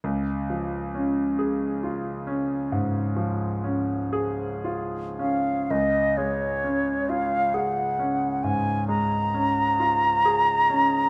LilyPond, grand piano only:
\new Staff \with { instrumentName = "Grand piano" } { \time 12/8 \key des \major \tempo 4. = 44 des,8 f8 des'8 aes'8 f'8 des'8 aes,8 f8 des'8 aes'8 f'8 des'8 | des,8 aes8 des'8 f'8 aes'8 des'8 aes,8 aes8 des'8 f'8 aes'8 des'8 | }